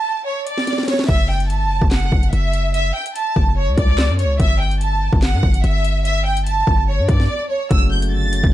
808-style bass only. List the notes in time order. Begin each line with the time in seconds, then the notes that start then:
1.09 F#1
1.50 G1
1.66 F#1
1.82 F#1
2.12 F#1
2.33 F#1
3.36 F#1
3.68 C#2
3.78 C#2
4.09 F#2
4.24 C#2
4.40 G1
5.13 G1
5.33 G2
5.43 G1
5.64 G1
6.67 G1
6.99 G2
7.09 G2
7.71 F#1
8.12 G1
8.28 F#1
8.44 F#1